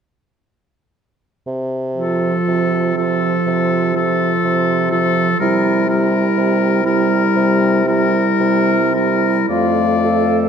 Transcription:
1.47 2.36 C3 soft
1.97 2.94 F3 soft
1.97 2.94 F4 soft
1.97 2.94 A4 soft
2.48 3.34 C3 soft
2.96 3.92 F3 soft
2.96 3.93 F4 soft
2.96 3.93 A4 soft
3.47 4.32 C3 soft
3.94 4.90 F3 soft
3.94 4.89 F4 soft
3.94 4.90 A4 soft
4.44 5.29 C3 soft
4.91 5.39 F3 soft
4.91 5.39 F4 soft
4.91 5.38 A4 soft
5.39 6.26 C3 soft
5.39 5.87 G3 soft
5.39 5.87 E4 soft
5.39 5.87 A#4 soft
5.88 6.83 G3 soft
5.88 6.82 E4 soft
5.88 6.83 A#4 soft
6.38 7.24 C3 soft
6.84 7.85 G3 soft
6.84 7.85 E4 soft
6.84 7.86 A#4 soft
7.36 8.28 C3 soft
7.86 8.77 G3 soft
7.86 8.93 E4 soft
7.86 8.93 A#4 soft
8.40 9.38 C3 soft
8.94 9.48 G3 soft
8.94 9.48 E4 soft
8.94 9.48 A#4 soft
9.48 10.49 F2 soft
9.48 10.49 A3 soft
9.48 10.07 F4 soft
9.48 10.49 D5 soft
9.48 10.49 F5 soft
10.05 10.49 A4 soft

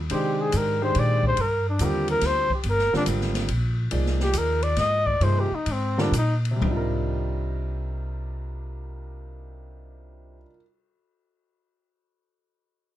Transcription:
0.10 0.51 C3 medium
0.10 0.75 D#3 medium
0.10 0.75 G#3 medium
0.10 0.76 D4 medium
0.10 0.76 G4 medium
0.10 0.76 C5 medium
0.10 ride medium
0.14 0.43 G4 medium
0.41 0.59 G#4 medium
0.52 0.94 G#2 medium
0.52 hi-hat pedal medium
0.52 ride medium
0.57 0.83 A#4 medium
0.81 1.34 D#3 medium
0.81 1.35 G#3 medium
0.81 1.34 D4 medium
0.81 1.35 G4 medium
0.81 1.35 C5 medium
0.81 1.01 C5 medium
0.95 1.36 A#2 medium
0.95 ride medium
0.99 1.25 D5 medium
1.23 1.43 C5 medium
1.23 kick medium
1.37 1.78 G2 medium
1.37 ride medium
1.41 1.67 A#4 medium
1.70 1.86 D4 medium
1.79 2.20 D#2 medium
1.79 2.45 D3 medium
1.79 2.45 G3 soft
1.79 2.45 C4 soft
1.79 2.45 F4 soft
1.79 2.45 A#4 medium
1.79 hi-hat pedal soft
1.79 ride medium
1.85 2.10 G4 medium
2.08 2.28 A#4 medium
2.08 ride soft
2.21 2.48 D2 medium
2.21 snare soft
2.21 ride medium
2.26 2.52 C5 medium
2.50 muted upright bass stroke soft
2.50 kick soft
2.55 2.71 G4 soft
2.63 2.90 G1 medium
2.63 ride medium
2.69 2.95 A#4 medium
2.78 snare soft
2.93 3.46 D3 medium
2.93 3.46 G3 medium
2.93 3.47 C4 medium
2.93 3.04 D4 medium
2.93 3.47 F4 medium
2.93 3.47 A#4 medium
2.93 muted upright bass stroke soft
2.93 snare soft
3.06 3.47 G#1 medium
3.06 hi-hat pedal soft
3.06 ride medium
3.21 snare soft
3.34 snare soft
3.34 ride soft
3.48 3.90 A#1 medium
3.48 ride medium
3.91 4.33 C2 medium
3.91 5.12 F3 soft
3.91 5.12 A#3 soft
3.91 5.12 D#4 soft
3.91 5.12 G#4 soft
3.91 5.12 D5 soft
3.91 ride medium
4.06 snare soft
4.20 4.39 G4 medium
4.20 snare soft
4.33 4.75 D#2 medium
4.33 hi-hat pedal soft
4.33 ride medium
4.38 4.65 A#4 medium
4.62 4.80 D5 medium
4.62 ride soft
4.76 5.19 G#2 medium
4.76 5.08 D#5 loud
4.76 snare soft
4.76 ride soft
5.06 5.25 D5 medium
5.06 kick soft
5.20 5.49 G2 medium
5.20 5.48 C3 soft
5.20 5.48 F3 soft
5.20 5.48 A#3 soft
5.20 5.48 D#4 soft
5.20 5.48 G#4 medium
5.20 5.41 C5 medium
5.20 ride soft
5.40 5.56 G4 medium
5.51 5.73 D#4 medium
5.51 muted upright bass stroke soft
5.66 6.11 G#2 medium
5.66 ride medium
5.72 6.02 C4 medium
5.98 6.11 D3 medium
5.98 6.12 G3 medium
5.98 6.12 C4 medium
5.98 6.15 D4 medium
5.98 6.12 F4 medium
5.98 6.12 A#4 medium
5.98 snare soft
6.12 6.60 A#2 medium
6.12 hi-hat pedal medium
6.12 ride medium
6.17 6.36 D#4 medium
6.45 ride soft
6.51 10.36 C3 medium
6.56 10.41 G3 medium
6.61 10.43 C2 medium
6.61 10.46 D4 medium
6.61 kick medium
6.61 floor tom medium
6.66 10.51 D#4 soft
6.71 10.56 F4 medium
6.77 10.61 A#4 medium

